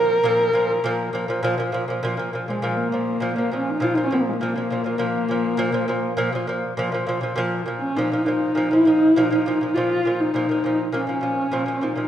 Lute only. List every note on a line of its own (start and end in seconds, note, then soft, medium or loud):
0.00 0.19 A#2 medium
0.00 0.19 F3 medium
0.23 0.48 A#2 loud
0.23 0.49 F3 loud
0.53 0.78 A#2 medium
0.53 0.79 F3 medium
0.84 1.08 A#2 loud
0.84 1.09 F3 loud
1.13 1.26 A#2 medium
1.13 1.26 F3 medium
1.28 1.41 A#2 medium
1.28 1.41 F3 medium
1.43 1.55 A#2 loud
1.43 1.56 F3 loud
1.58 1.70 A#2 medium
1.58 1.71 F3 medium
1.72 1.85 A#2 medium
1.72 1.86 F3 medium
1.88 2.00 A#2 medium
1.88 2.01 F3 medium
2.03 2.15 A#2 loud
2.03 2.16 F3 loud
2.17 2.30 A#2 medium
2.17 2.31 F3 medium
2.33 2.45 A#2 medium
2.33 2.46 F3 medium
2.48 2.60 A#2 medium
2.48 2.61 F3 medium
2.62 2.86 A#2 medium
2.62 2.87 F3 medium
2.92 3.16 A#2 medium
2.92 3.17 F3 medium
3.20 3.33 A#2 medium
3.20 3.34 F3 medium
3.36 3.48 A#2 medium
3.36 3.50 F3 medium
3.52 3.75 A#2 medium
3.52 3.76 F3 medium
3.80 3.93 A#2 medium
3.80 3.94 F3 medium
3.95 4.08 A#2 medium
3.95 4.09 F3 medium
4.11 4.35 A#2 medium
4.11 4.36 F3 medium
4.41 4.53 A#2 medium
4.41 4.54 F3 medium
4.56 4.68 A#2 medium
4.56 4.69 F3 medium
4.70 4.82 A#2 medium
4.70 4.83 F3 medium
4.84 4.97 A#2 medium
4.84 4.98 F3 medium
4.98 5.23 A#2 medium
4.98 5.24 F3 medium
5.28 5.53 A#2 medium
5.28 5.54 F3 medium
5.57 5.70 A#2 loud
5.57 5.71 F3 loud
5.72 5.85 A#2 medium
5.72 5.86 F3 medium
5.88 6.12 A#2 medium
5.88 6.13 F3 medium
6.17 6.30 A#2 loud
6.17 6.30 F3 loud
6.32 6.45 A#2 medium
6.32 6.46 F3 medium
6.47 6.72 A#2 medium
6.47 6.73 F3 medium
6.77 6.90 A#2 loud
6.77 6.90 F3 loud
6.92 7.04 A#2 medium
6.92 7.06 F3 medium
7.07 7.19 A#2 medium
7.07 7.20 F3 medium
7.21 7.34 A#2 medium
7.21 7.35 F3 medium
7.36 7.60 A#2 loud
7.36 7.61 F3 loud
7.66 7.90 A#2 medium
7.66 7.91 F3 medium
7.96 8.09 A#2 medium
7.96 8.10 F3 loud
8.12 8.24 A#2 medium
8.12 8.24 F3 medium
8.26 8.50 A#2 medium
8.26 8.51 F3 medium
8.55 8.67 A#2 medium
8.55 8.69 F3 medium
8.71 8.83 A#2 medium
8.71 8.84 F3 medium
8.85 9.09 A#2 medium
8.85 9.10 F3 medium
9.16 9.28 A#2 loud
9.16 9.28 F3 loud
9.30 9.42 A#2 medium
9.30 9.43 F3 medium
9.46 9.57 A#2 medium
9.46 9.58 F3 medium
9.61 9.72 A#2 medium
9.61 9.73 F3 medium
9.76 9.99 A#2 medium
9.76 10.00 F3 medium
10.05 10.28 A#2 medium
10.05 10.29 F3 medium
10.34 10.46 A#2 medium
10.34 10.47 F3 medium
10.49 10.61 A#2 medium
10.49 10.62 F3 medium
10.64 10.87 A#2 medium
10.64 10.88 F3 medium
10.92 11.05 A#2 medium
10.92 11.05 F3 medium
11.07 11.19 A#2 medium
11.07 11.20 F3 medium
11.21 11.45 A#2 medium
11.21 11.46 F3 medium
11.51 11.64 A#2 medium
11.51 11.64 F3 medium
11.66 11.78 A#2 medium
11.66 11.79 F3 medium
11.81 11.93 A#2 medium
11.81 11.94 F3 medium
11.96 12.08 A#2 medium
11.96 12.08 F3 medium